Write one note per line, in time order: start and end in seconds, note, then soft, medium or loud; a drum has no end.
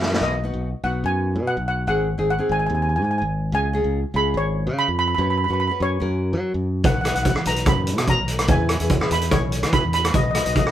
0.00 0.20 F#2 medium
0.00 snare medium
0.13 snare medium
0.21 0.51 B1 loud
0.21 0.35 B3 medium
0.21 0.35 D#4 medium
0.21 0.36 F#4 medium
0.21 0.87 D#5 loud
0.44 0.69 B3 medium
0.44 0.69 D#4 medium
0.44 0.69 F#4 medium
0.54 0.73 B1 medium
0.84 1.03 B1 medium
0.84 1.34 B3 medium
0.84 1.35 D#4 medium
0.84 1.35 F#4 medium
0.84 1.06 F#5 medium
1.04 1.37 F#2 medium
1.04 1.48 G#5 loud
1.36 1.55 B2 medium
1.47 1.57 F#5 medium
1.57 1.85 B1 medium
1.68 1.77 F#5 medium
1.87 2.17 G#1 loud
1.87 2.06 C4 medium
1.87 2.07 D#4 medium
1.87 2.07 G#4 medium
1.87 2.29 F#5 loud
2.18 2.38 G#1 medium
2.18 2.30 C4 medium
2.18 2.31 D#4 medium
2.18 2.31 G#4 medium
2.30 2.49 F#5 medium
2.38 2.88 C4 medium
2.38 2.89 D#4 medium
2.38 2.89 G#4 medium
2.49 2.69 G#1 medium
2.49 2.58 G#5 medium
2.59 2.66 G#5 medium
2.67 3.02 D#2 loud
2.67 2.73 G#5 medium
2.75 2.81 G#5 medium
2.82 2.88 G#5 medium
2.89 2.95 G#5 medium
2.96 3.03 G#5 medium
3.02 3.21 G#2 loud
3.02 3.10 G#5 medium
3.11 3.17 G#5 medium
3.18 3.50 G#1 medium
3.18 3.25 G#5 medium
3.52 3.82 C#2 loud
3.52 3.66 C#4 medium
3.52 3.66 F4 medium
3.52 3.66 G#4 medium
3.52 4.18 G#5 loud
3.73 3.99 C#4 medium
3.73 3.99 F4 medium
3.73 3.99 G#4 medium
3.84 4.03 C#2 medium
4.14 4.33 C#2 medium
4.14 4.65 C#4 medium
4.14 4.65 F4 medium
4.14 4.65 G#4 medium
4.14 4.37 B5 loud
4.34 4.68 G#1 loud
4.34 4.75 C#5 loud
4.67 4.86 C#3 loud
4.79 4.97 B5 loud
4.88 5.16 F2 medium
4.99 5.06 B5 loud
5.08 5.13 B5 medium
5.15 5.47 F#2 loud
5.15 5.37 C#4 medium
5.15 5.20 B5 medium
5.19 5.37 F#4 medium
5.19 5.37 B4 medium
5.19 5.28 B5 medium
5.30 5.36 B5 medium
5.38 5.43 B5 medium
5.44 5.51 B5 medium
5.48 5.69 F#2 medium
5.48 5.61 C#4 medium
5.48 5.62 F#4 medium
5.48 5.62 B4 medium
5.53 5.58 B5 medium
5.60 5.66 B5 medium
5.68 5.99 C#4 medium
5.68 5.99 F#4 medium
5.68 6.01 B4 medium
5.68 5.73 B5 medium
5.80 5.99 F#2 medium
5.80 6.60 C#5 loud
6.00 6.34 F#2 loud
6.00 6.67 C#4 medium
6.00 6.67 F#4 medium
6.00 6.68 A#4 medium
6.33 6.52 F#3 loud
6.54 6.82 F#2 medium
6.83 7.13 B1 loud
6.83 6.97 D#4 medium
6.83 6.97 F#4 medium
6.83 6.97 B4 medium
6.83 6.93 F#5 loud
6.83 kick loud
6.83 closed hi-hat medium
6.94 7.00 F#5 medium
7.01 7.29 D#4 medium
7.01 7.29 F#4 medium
7.01 7.07 F#5 medium
7.01 cross-stick medium
7.01 closed hi-hat medium
7.05 7.30 B4 medium
7.05 7.14 F#5 medium
7.15 7.35 B1 medium
7.15 7.22 F#5 medium
7.15 closed hi-hat medium
7.23 7.29 F#5 medium
7.23 kick medium
7.23 closed hi-hat medium
7.30 7.37 F#5 medium
7.36 cross-stick medium
7.45 7.65 B1 medium
7.45 7.96 D#4 medium
7.45 7.96 F#4 medium
7.45 7.96 B4 medium
7.45 7.68 A#5 medium
7.45 closed hi-hat medium
7.56 closed hi-hat medium
7.66 7.98 F#2 loud
7.66 8.10 B5 loud
7.66 kick loud
7.66 cross-stick medium
7.66 closed hi-hat medium
7.87 closed hi-hat medium
7.98 8.17 B2 medium
7.98 cross-stick medium
7.98 closed hi-hat medium
8.07 8.51 A#5 loud
8.07 kick medium
8.07 closed hi-hat medium
8.18 8.46 B1 medium
8.28 closed hi-hat medium
8.39 cross-stick medium
8.39 closed hi-hat medium
8.48 8.78 E2 loud
8.48 8.67 E4 medium
8.48 8.68 G#4 medium
8.48 8.68 B4 medium
8.48 9.14 G#5 loud
8.48 kick loud
8.48 closed hi-hat medium
8.69 cross-stick medium
8.69 closed hi-hat medium
8.80 8.99 E2 medium
8.80 8.92 E4 medium
8.80 8.93 G#4 medium
8.80 8.93 B4 medium
8.80 closed hi-hat medium
8.90 kick medium
8.90 closed hi-hat medium
9.01 9.50 E4 medium
9.01 9.50 G#4 medium
9.01 9.51 B4 medium
9.01 cross-stick medium
9.11 9.30 E2 medium
9.11 9.33 B5 medium
9.11 closed hi-hat medium
9.21 closed hi-hat medium
9.31 9.64 B1 loud
9.31 9.74 C#5 loud
9.31 kick loud
9.31 cross-stick medium
9.31 closed hi-hat medium
9.52 closed hi-hat medium
9.63 9.82 E3 loud
9.63 cross-stick medium
9.63 closed hi-hat medium
9.73 9.93 B5 loud
9.73 kick medium
9.73 closed hi-hat medium
9.84 10.12 E2 medium
9.93 10.15 B5 loud
9.93 closed hi-hat medium
10.05 cross-stick medium
10.05 closed hi-hat medium
10.14 10.43 B1 loud
10.14 10.28 D#4 medium
10.14 10.28 F#4 medium
10.14 10.28 B4 medium
10.14 10.22 D#5 medium
10.14 kick loud
10.14 closed hi-hat medium
10.23 10.30 D#5 medium
10.31 10.36 D#5 medium
10.31 cross-stick medium
10.31 closed hi-hat medium
10.35 10.60 D#4 medium
10.35 10.61 F#4 medium
10.35 10.61 B4 medium
10.35 10.44 D#5 medium
10.45 10.65 B1 medium
10.45 10.51 D#5 medium
10.45 closed hi-hat medium
10.52 10.58 D#5 medium
10.52 kick medium
10.52 closed hi-hat medium
10.59 10.67 D#5 medium
10.66 cross-stick medium